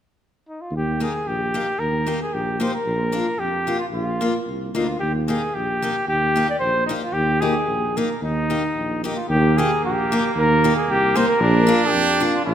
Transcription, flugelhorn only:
0, 0, Header, 1, 2, 480
1, 0, Start_track
1, 0, Key_signature, -3, "major"
1, 0, Tempo, 536673
1, 640, Time_signature, 2, 2, 24, 8
1, 8798, Tempo, 525855
1, 11266, End_track
2, 0, Start_track
2, 0, Title_t, "Flugelhorn"
2, 0, Program_c, 0, 56
2, 436, Note_on_c, 0, 63, 45
2, 545, Note_on_c, 0, 65, 52
2, 558, Note_off_c, 0, 63, 0
2, 651, Note_off_c, 0, 65, 0
2, 683, Note_on_c, 0, 67, 68
2, 900, Note_off_c, 0, 67, 0
2, 919, Note_on_c, 0, 68, 71
2, 1137, Note_on_c, 0, 67, 83
2, 1150, Note_off_c, 0, 68, 0
2, 1603, Note_on_c, 0, 70, 82
2, 1616, Note_off_c, 0, 67, 0
2, 1970, Note_off_c, 0, 70, 0
2, 1985, Note_on_c, 0, 68, 66
2, 2087, Note_on_c, 0, 67, 72
2, 2100, Note_off_c, 0, 68, 0
2, 2335, Note_off_c, 0, 67, 0
2, 2340, Note_on_c, 0, 72, 63
2, 2445, Note_off_c, 0, 72, 0
2, 2451, Note_on_c, 0, 70, 79
2, 3033, Note_on_c, 0, 67, 85
2, 3046, Note_off_c, 0, 70, 0
2, 3391, Note_off_c, 0, 67, 0
2, 3397, Note_on_c, 0, 65, 60
2, 3450, Note_off_c, 0, 65, 0
2, 3513, Note_on_c, 0, 65, 74
2, 3961, Note_off_c, 0, 65, 0
2, 4253, Note_on_c, 0, 63, 50
2, 4360, Note_on_c, 0, 65, 52
2, 4373, Note_off_c, 0, 63, 0
2, 4460, Note_off_c, 0, 65, 0
2, 4465, Note_on_c, 0, 67, 76
2, 4583, Note_off_c, 0, 67, 0
2, 4722, Note_on_c, 0, 68, 72
2, 4957, Note_on_c, 0, 67, 82
2, 4971, Note_off_c, 0, 68, 0
2, 5431, Note_off_c, 0, 67, 0
2, 5437, Note_on_c, 0, 67, 96
2, 5776, Note_off_c, 0, 67, 0
2, 5808, Note_on_c, 0, 74, 70
2, 5858, Note_off_c, 0, 74, 0
2, 5900, Note_on_c, 0, 72, 94
2, 6132, Note_off_c, 0, 72, 0
2, 6137, Note_on_c, 0, 63, 53
2, 6195, Note_off_c, 0, 63, 0
2, 6277, Note_on_c, 0, 65, 79
2, 6374, Note_on_c, 0, 67, 94
2, 6387, Note_off_c, 0, 65, 0
2, 6623, Note_on_c, 0, 68, 76
2, 6636, Note_off_c, 0, 67, 0
2, 7128, Note_on_c, 0, 70, 56
2, 7142, Note_off_c, 0, 68, 0
2, 7354, Note_off_c, 0, 70, 0
2, 7363, Note_on_c, 0, 63, 81
2, 8057, Note_off_c, 0, 63, 0
2, 8082, Note_on_c, 0, 63, 48
2, 8185, Note_off_c, 0, 63, 0
2, 8190, Note_on_c, 0, 65, 58
2, 8304, Note_off_c, 0, 65, 0
2, 8309, Note_on_c, 0, 67, 86
2, 8562, Note_on_c, 0, 68, 80
2, 8575, Note_off_c, 0, 67, 0
2, 8794, Note_off_c, 0, 68, 0
2, 8809, Note_on_c, 0, 67, 74
2, 9253, Note_off_c, 0, 67, 0
2, 9296, Note_on_c, 0, 70, 102
2, 9628, Note_off_c, 0, 70, 0
2, 9640, Note_on_c, 0, 68, 81
2, 9772, Note_on_c, 0, 67, 103
2, 9786, Note_off_c, 0, 68, 0
2, 10007, Note_on_c, 0, 72, 76
2, 10021, Note_off_c, 0, 67, 0
2, 10112, Note_off_c, 0, 72, 0
2, 10117, Note_on_c, 0, 70, 95
2, 10649, Note_on_c, 0, 68, 70
2, 10663, Note_off_c, 0, 70, 0
2, 10689, Note_on_c, 0, 67, 87
2, 10702, Note_off_c, 0, 68, 0
2, 10972, Note_off_c, 0, 67, 0
2, 11086, Note_on_c, 0, 65, 73
2, 11180, Note_off_c, 0, 65, 0
2, 11186, Note_on_c, 0, 65, 87
2, 11266, Note_off_c, 0, 65, 0
2, 11266, End_track
0, 0, End_of_file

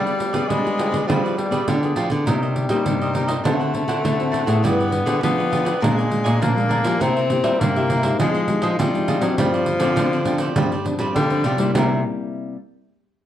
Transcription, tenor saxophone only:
0, 0, Header, 1, 2, 480
1, 0, Start_track
1, 0, Key_signature, -3, "minor"
1, 0, Tempo, 592885
1, 1835, Time_signature, 4, 2, 24, 8
1, 10734, End_track
2, 0, Start_track
2, 0, Title_t, "Tenor saxophone"
2, 0, Program_c, 0, 66
2, 0, Note_on_c, 0, 55, 115
2, 390, Note_on_c, 0, 56, 107
2, 402, Note_off_c, 0, 55, 0
2, 870, Note_on_c, 0, 53, 94
2, 882, Note_off_c, 0, 56, 0
2, 1109, Note_off_c, 0, 53, 0
2, 1113, Note_on_c, 0, 55, 93
2, 1562, Note_off_c, 0, 55, 0
2, 1831, Note_on_c, 0, 55, 106
2, 2761, Note_off_c, 0, 55, 0
2, 2792, Note_on_c, 0, 57, 99
2, 3765, Note_on_c, 0, 59, 116
2, 3777, Note_off_c, 0, 57, 0
2, 4232, Note_off_c, 0, 59, 0
2, 4237, Note_on_c, 0, 59, 106
2, 4724, Note_on_c, 0, 56, 100
2, 4736, Note_off_c, 0, 59, 0
2, 5196, Note_on_c, 0, 58, 108
2, 5208, Note_off_c, 0, 56, 0
2, 5681, Note_on_c, 0, 60, 116
2, 5693, Note_off_c, 0, 58, 0
2, 6154, Note_on_c, 0, 58, 104
2, 6166, Note_off_c, 0, 60, 0
2, 6629, Note_off_c, 0, 58, 0
2, 6634, Note_on_c, 0, 56, 108
2, 7082, Note_off_c, 0, 56, 0
2, 7116, Note_on_c, 0, 55, 89
2, 7600, Note_on_c, 0, 53, 114
2, 7612, Note_off_c, 0, 55, 0
2, 8818, Note_off_c, 0, 53, 0
2, 9025, Note_on_c, 0, 55, 118
2, 9476, Note_off_c, 0, 55, 0
2, 9502, Note_on_c, 0, 55, 83
2, 9730, Note_off_c, 0, 55, 0
2, 10734, End_track
0, 0, End_of_file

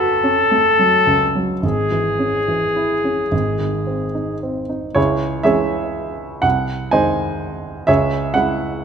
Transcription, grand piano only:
0, 0, Header, 1, 2, 480
1, 0, Start_track
1, 0, Key_signature, 4, "minor"
1, 0, Tempo, 1113173
1, 703, Time_signature, 6, 3, 24, 8
1, 2142, Tempo, 980392
1, 3102, Tempo, 938967
1, 4082, End_track
2, 0, Start_track
2, 0, Title_t, "Grand piano"
2, 0, Program_c, 0, 0
2, 0, Control_c, 0, 64, 127
2, 0, Note_on_c, 0, 30, 54
2, 0, Note_on_c, 0, 54, 38
2, 0, Note_on_c, 0, 57, 44
2, 0, Note_on_c, 0, 61, 38
2, 0, Note_on_c, 0, 66, 43
2, 0, Note_on_c, 0, 69, 43
2, 55, Note_off_c, 0, 69, 0
2, 101, Note_off_c, 0, 61, 0
2, 101, Note_on_c, 0, 61, 42
2, 173, Note_off_c, 0, 66, 0
2, 221, Note_off_c, 0, 57, 0
2, 221, Note_on_c, 0, 57, 37
2, 292, Note_off_c, 0, 61, 0
2, 341, Note_off_c, 0, 54, 0
2, 341, Note_on_c, 0, 54, 33
2, 413, Note_off_c, 0, 57, 0
2, 460, Note_on_c, 0, 37, 37
2, 533, Note_off_c, 0, 54, 0
2, 583, Note_on_c, 0, 54, 33
2, 654, Note_off_c, 0, 37, 0
2, 688, Note_off_c, 0, 30, 0
2, 701, Note_on_c, 0, 32, 42
2, 704, Note_off_c, 0, 54, 0
2, 710, Control_c, 0, 64, 0
2, 808, Control_c, 0, 64, 127
2, 824, Note_on_c, 0, 52, 33
2, 945, Note_on_c, 0, 61, 33
2, 1020, Note_off_c, 0, 52, 0
2, 1070, Note_on_c, 0, 52, 31
2, 1141, Note_off_c, 0, 61, 0
2, 1191, Note_on_c, 0, 64, 34
2, 1264, Note_off_c, 0, 52, 0
2, 1312, Note_on_c, 0, 61, 32
2, 1384, Note_off_c, 0, 64, 0
2, 1414, Note_off_c, 0, 32, 0
2, 1428, Note_on_c, 0, 32, 44
2, 1432, Note_off_c, 0, 61, 0
2, 1441, Control_c, 0, 64, 0
2, 1536, Control_c, 0, 64, 127
2, 1546, Note_on_c, 0, 51, 35
2, 1667, Note_on_c, 0, 60, 34
2, 1741, Note_off_c, 0, 51, 0
2, 1789, Note_on_c, 0, 63, 32
2, 1863, Note_off_c, 0, 60, 0
2, 1909, Note_on_c, 0, 60, 37
2, 1984, Note_off_c, 0, 63, 0
2, 2024, Note_on_c, 0, 63, 36
2, 2097, Note_off_c, 0, 60, 0
2, 2123, Note_off_c, 0, 32, 0
2, 2132, Note_on_c, 0, 73, 69
2, 2136, Note_on_c, 0, 37, 51
2, 2137, Note_on_c, 0, 64, 53
2, 2138, Note_off_c, 0, 63, 0
2, 2138, Note_on_c, 0, 68, 55
2, 2151, Control_c, 0, 64, 0
2, 2229, Control_c, 0, 64, 127
2, 2364, Note_off_c, 0, 64, 0
2, 2364, Note_off_c, 0, 68, 0
2, 2371, Note_off_c, 0, 73, 0
2, 2371, Note_on_c, 0, 76, 71
2, 2373, Note_off_c, 0, 37, 0
2, 2375, Note_on_c, 0, 52, 39
2, 2377, Note_on_c, 0, 68, 55
2, 2378, Note_on_c, 0, 56, 40
2, 2379, Note_on_c, 0, 73, 52
2, 2381, Note_on_c, 0, 61, 45
2, 2839, Note_off_c, 0, 52, 0
2, 2840, Note_off_c, 0, 68, 0
2, 2841, Note_off_c, 0, 56, 0
2, 2841, Note_off_c, 0, 73, 0
2, 2842, Note_off_c, 0, 61, 0
2, 2852, Note_on_c, 0, 78, 81
2, 2856, Note_off_c, 0, 76, 0
2, 2857, Note_on_c, 0, 36, 53
2, 2872, Control_c, 0, 64, 0
2, 2967, Control_c, 0, 64, 127
2, 3093, Note_off_c, 0, 36, 0
2, 3095, Note_on_c, 0, 80, 76
2, 3097, Note_off_c, 0, 78, 0
2, 3101, Note_on_c, 0, 51, 38
2, 3101, Note_on_c, 0, 56, 38
2, 3101, Note_on_c, 0, 72, 60
2, 3101, Note_on_c, 0, 75, 53
2, 3103, Note_on_c, 0, 63, 43
2, 3568, Note_off_c, 0, 51, 0
2, 3568, Note_off_c, 0, 72, 0
2, 3568, Note_off_c, 0, 75, 0
2, 3569, Note_off_c, 0, 56, 0
2, 3569, Note_off_c, 0, 63, 0
2, 3583, Note_on_c, 0, 76, 80
2, 3586, Note_off_c, 0, 80, 0
2, 3589, Note_on_c, 0, 37, 54
2, 3589, Note_on_c, 0, 68, 61
2, 3589, Note_on_c, 0, 73, 57
2, 3599, Control_c, 0, 64, 0
2, 3691, Control_c, 0, 64, 127
2, 3811, Note_off_c, 0, 68, 0
2, 3811, Note_off_c, 0, 73, 0
2, 3820, Note_off_c, 0, 37, 0
2, 3822, Note_on_c, 0, 78, 81
2, 3824, Note_off_c, 0, 76, 0
2, 3826, Note_on_c, 0, 49, 36
2, 3830, Note_on_c, 0, 56, 39
2, 3830, Note_on_c, 0, 64, 39
2, 4082, Note_off_c, 0, 49, 0
2, 4082, Note_off_c, 0, 56, 0
2, 4082, Note_off_c, 0, 64, 0
2, 4082, Note_off_c, 0, 78, 0
2, 4082, End_track
0, 0, End_of_file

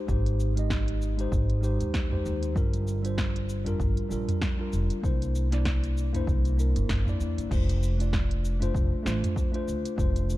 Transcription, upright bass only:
0, 0, Header, 1, 2, 480
1, 0, Start_track
1, 0, Tempo, 618557
1, 68, Time_signature, 4, 2, 24, 8
1, 8050, End_track
2, 0, Start_track
2, 0, Title_t, "Upright bass"
2, 0, Program_c, 0, 32
2, 66, Note_on_c, 0, 32, 96
2, 1000, Note_off_c, 0, 32, 0
2, 1023, Note_on_c, 0, 32, 91
2, 1367, Note_off_c, 0, 32, 0
2, 1405, Note_on_c, 0, 39, 76
2, 1720, Note_off_c, 0, 39, 0
2, 1752, Note_on_c, 0, 39, 94
2, 1956, Note_off_c, 0, 39, 0
2, 1983, Note_on_c, 0, 31, 100
2, 2918, Note_off_c, 0, 31, 0
2, 2947, Note_on_c, 0, 31, 84
2, 3062, Note_off_c, 0, 31, 0
2, 3187, Note_on_c, 0, 34, 81
2, 3303, Note_off_c, 0, 34, 0
2, 3671, Note_on_c, 0, 29, 78
2, 3784, Note_off_c, 0, 29, 0
2, 3907, Note_on_c, 0, 36, 92
2, 4840, Note_off_c, 0, 36, 0
2, 4869, Note_on_c, 0, 36, 91
2, 5210, Note_off_c, 0, 36, 0
2, 5246, Note_on_c, 0, 31, 82
2, 5344, Note_off_c, 0, 31, 0
2, 5348, Note_on_c, 0, 31, 85
2, 5463, Note_off_c, 0, 31, 0
2, 5587, Note_on_c, 0, 40, 85
2, 5703, Note_off_c, 0, 40, 0
2, 5725, Note_on_c, 0, 31, 76
2, 5810, Note_off_c, 0, 31, 0
2, 5828, Note_on_c, 0, 29, 95
2, 6761, Note_off_c, 0, 29, 0
2, 6788, Note_on_c, 0, 29, 87
2, 6903, Note_off_c, 0, 29, 0
2, 7027, Note_on_c, 0, 33, 90
2, 7142, Note_off_c, 0, 33, 0
2, 7510, Note_on_c, 0, 38, 74
2, 7624, Note_off_c, 0, 38, 0
2, 7744, Note_on_c, 0, 29, 92
2, 8050, Note_off_c, 0, 29, 0
2, 8050, End_track
0, 0, End_of_file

